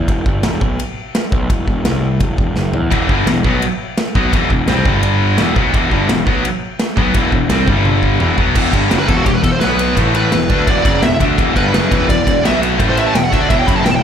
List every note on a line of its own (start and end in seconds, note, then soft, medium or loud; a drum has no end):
0.08 0.25 E1 medium
0.08 kick medium
0.08 ride bell medium
0.26 0.43 G1 medium
0.26 kick loud
0.43 0.61 E1 medium
0.43 snare loud
0.43 ride bell medium
0.61 0.78 B1 medium
0.61 kick loud
0.80 ride bell medium
1.15 snare loud
1.15 ride bell medium
1.32 1.49 B1 medium
1.32 kick loud
1.50 1.66 E1 medium
1.50 kick loud
1.50 ride bell medium
1.68 1.84 E1 medium
1.68 kick medium
1.85 2.18 C2 medium
1.85 snare loud
1.85 ride bell medium
2.20 2.37 E1 medium
2.20 kick loud
2.20 ride bell medium
2.38 2.55 E1 medium
2.38 kick loud
2.56 2.72 F#1 loud
2.56 snare medium
2.74 2.90 E2 medium
2.74 floor tom medium
2.91 3.08 E1 loud
2.91 3.09 E2 medium
2.91 3.09 B2 loud
2.91 3.09 E3 loud
2.91 kick loud
2.91 ride bell medium
3.09 3.26 G1 medium
3.09 3.27 G2 medium
3.09 3.27 D3 medium
3.09 3.27 G3 loud
3.09 kick loud
3.26 3.43 E1 medium
3.26 3.42 E2 medium
3.26 3.42 B2 medium
3.26 snare loud
3.26 ride bell medium
3.44 3.61 B1 medium
3.44 3.62 B2 medium
3.44 3.63 F#3 medium
3.44 3.63 B3 loud
3.44 kick loud
3.62 ride bell medium
3.98 snare loud
3.98 ride bell medium
4.15 4.32 B1 medium
4.15 4.32 B2 loud
4.15 4.33 F#3 loud
4.15 4.33 B3 loud
4.15 kick loud
4.33 4.49 E1 loud
4.33 4.49 E2 loud
4.33 4.50 B2 loud
4.33 4.50 E3 loud
4.33 kick loud
4.33 ride bell medium
4.50 4.67 E1 medium
4.50 4.65 E2 medium
4.50 4.65 B2 medium
4.50 kick medium
4.68 4.85 C2 medium
4.68 4.85 C3 loud
4.68 4.85 G3 loud
4.68 4.86 C4 loud
4.68 snare loud
4.68 ride bell medium
4.85 5.35 G1 loud
4.85 5.38 G2 medium
4.85 5.38 D3 medium
4.85 5.38 G3 loud
4.85 kick loud
5.03 ride bell medium
5.38 5.55 E1 loud
5.38 5.56 E2 medium
5.38 5.54 B2 loud
5.38 5.56 E3 loud
5.38 snare loud
5.38 ride bell medium
5.55 5.73 B1 medium
5.55 5.73 B2 loud
5.55 5.73 F#3 loud
5.55 5.74 B3 loud
5.55 kick loud
5.73 5.90 E1 medium
5.73 5.91 E2 loud
5.73 5.91 B2 loud
5.73 5.91 E3 loud
5.73 kick loud
5.73 ride bell medium
5.91 6.08 G1 medium
5.91 6.08 G2 loud
5.91 6.09 D3 medium
5.91 6.09 G3 loud
5.91 kick medium
6.09 6.25 E1 medium
6.09 6.24 E2 medium
6.09 6.24 B2 medium
6.09 snare loud
6.09 ride bell medium
6.27 6.43 B1 medium
6.27 6.44 B2 medium
6.27 6.44 F#3 loud
6.27 6.44 B3 medium
6.27 kick loud
6.45 ride bell medium
6.79 snare loud
6.79 ride bell medium
6.97 7.14 B1 medium
6.97 7.15 B2 medium
6.97 7.15 F#3 loud
6.97 7.15 B3 loud
6.97 kick loud
7.14 7.31 E1 loud
7.14 7.32 E2 medium
7.14 7.32 B2 loud
7.14 7.33 E3 loud
7.14 kick loud
7.14 ride bell medium
7.32 7.49 E1 medium
7.32 7.47 E2 medium
7.32 7.47 B2 medium
7.32 kick medium
7.50 7.66 C2 loud
7.50 7.67 C3 medium
7.50 7.67 G3 loud
7.50 7.68 C4 loud
7.50 snare loud
7.50 ride bell medium
7.67 8.17 G1 medium
7.67 8.20 G2 medium
7.67 8.20 D3 medium
7.67 8.20 G3 medium
7.67 kick loud
7.85 high tom medium
8.03 kick medium
8.20 8.37 E1 loud
8.20 8.38 E2 medium
8.20 8.38 B2 medium
8.20 8.38 E3 medium
8.20 mid tom medium
8.38 8.54 B1 medium
8.38 8.56 B2 loud
8.38 8.56 F#3 loud
8.38 8.56 B3 loud
8.38 kick medium
8.55 8.72 E1 loud
8.55 8.73 E2 loud
8.55 8.74 B2 loud
8.55 8.74 E3 loud
8.55 kick medium
8.55 crash loud
8.73 8.90 G1 medium
8.73 8.90 G2 medium
8.73 8.91 D3 medium
8.73 8.91 G3 loud
8.73 kick medium
8.73 ride medium
8.90 9.08 F#1 medium
8.90 9.08 F#2 loud
8.90 9.08 C#3 loud
8.90 9.08 F#3 loud
8.90 snare loud
8.90 ride loud
8.99 9.08 B4 medium
9.08 9.25 E1 loud
9.08 9.25 E2 medium
9.08 9.25 B2 loud
9.08 9.26 E3 loud
9.08 9.17 A4 medium
9.08 kick loud
9.08 ride medium
9.17 9.25 F#4 medium
9.26 9.43 E1 medium
9.26 9.41 E2 medium
9.26 9.41 B2 medium
9.26 9.35 G4 medium
9.26 kick medium
9.26 ride loud
9.34 9.43 B4 medium
9.43 9.60 E1 medium
9.43 9.58 E2 medium
9.43 9.58 B2 medium
9.43 9.52 A4 medium
9.43 kick medium
9.43 ride medium
9.52 9.60 C5 loud
9.60 9.95 B1 medium
9.60 9.97 B2 medium
9.60 9.97 F#3 loud
9.60 9.97 B3 loud
9.60 9.94 B4 medium
9.60 snare loud
9.60 ride medium
9.79 ride medium
9.97 10.30 A1 medium
9.97 10.32 A2 medium
9.97 10.32 E3 medium
9.97 10.33 A3 loud
9.97 kick medium
9.97 ride loud
10.15 10.64 B4 medium
10.15 ride medium
10.32 10.49 E1 medium
10.32 10.47 E2 medium
10.32 10.47 B2 medium
10.32 snare loud
10.32 ride loud
10.50 10.66 D2 medium
10.50 10.68 D3 medium
10.50 10.68 A3 medium
10.50 10.68 D4 loud
10.50 kick loud
10.50 ride medium
10.67 10.84 E1 loud
10.67 10.85 E2 medium
10.67 10.85 B2 loud
10.67 10.85 E3 loud
10.67 11.00 D5 medium
10.67 kick loud
10.67 ride medium
10.85 11.02 F#1 medium
10.85 11.03 F#2 loud
10.85 11.03 C#3 medium
10.85 11.03 F#3 loud
10.85 kick loud
10.85 ride medium
11.03 11.20 E1 medium
11.03 11.17 E2 medium
11.03 11.17 B2 medium
11.03 11.20 E5 loud
11.03 snare loud
11.03 ride medium
11.20 11.37 D2 medium
11.20 11.38 D3 loud
11.20 11.38 A3 loud
11.20 11.38 D4 loud
11.20 kick loud
11.20 ride medium
11.38 11.55 E1 medium
11.38 11.55 E2 medium
11.38 11.55 B2 loud
11.38 11.56 E3 loud
11.38 kick medium
11.38 ride medium
11.56 11.73 G1 medium
11.56 11.73 G2 loud
11.56 11.73 D3 loud
11.56 11.73 G3 loud
11.56 12.06 B4 medium
11.56 kick medium
11.56 ride medium
11.73 11.90 F#1 loud
11.73 11.90 F#2 medium
11.73 11.91 C#3 loud
11.73 11.91 F#3 loud
11.73 snare loud
11.73 ride loud
11.91 12.08 E1 medium
11.91 12.08 E2 medium
11.91 12.08 B2 medium
11.91 12.09 E3 loud
11.91 kick loud
11.91 ride medium
12.09 12.26 E1 medium
12.09 12.23 E2 medium
12.09 12.23 B2 medium
12.09 12.42 D5 medium
12.09 kick loud
12.09 ride loud
12.27 12.43 E1 medium
12.27 12.41 E2 medium
12.27 12.41 B2 medium
12.27 kick loud
12.27 ride medium
12.44 12.78 B1 loud
12.44 12.80 B2 medium
12.44 12.80 F#3 medium
12.44 12.81 B3 loud
12.44 12.56 E5 medium
12.44 snare loud
12.44 ride loud
12.63 ride medium
12.80 13.13 A1 loud
12.80 13.14 A2 medium
12.80 13.15 E3 loud
12.80 13.15 A3 loud
12.80 kick loud
12.80 ride loud
12.90 12.98 C5 medium
12.97 13.06 E5 loud
12.97 ride medium
13.06 13.16 A5 loud
13.15 13.31 E1 medium
13.15 13.29 E2 medium
13.15 13.29 B2 medium
13.15 13.24 G5 medium
13.15 snare loud
13.15 ride loud
13.24 13.33 F#5 medium
13.32 13.49 D2 medium
13.32 13.50 D3 medium
13.32 13.50 A3 medium
13.32 13.50 D4 loud
13.32 13.41 E5 medium
13.32 kick loud
13.32 ride medium
13.41 13.49 D5 medium
13.49 13.67 E1 medium
13.49 13.67 E2 loud
13.49 13.67 B2 loud
13.49 13.67 E3 loud
13.49 13.58 E5 medium
13.49 kick loud
13.49 ride loud
13.59 13.68 G5 medium
13.67 13.84 F#1 loud
13.67 13.85 F#2 medium
13.67 13.85 C#3 loud
13.67 13.85 F#3 medium
13.67 13.76 B5 loud
13.67 kick loud
13.67 ride medium
13.76 13.84 A5 loud
13.84 14.02 E1 medium
13.84 14.00 E2 medium
13.84 14.00 B2 medium
13.84 13.91 G5 medium
13.84 snare loud
13.84 ride medium
13.91 13.95 A5 medium
13.96 14.02 G5 medium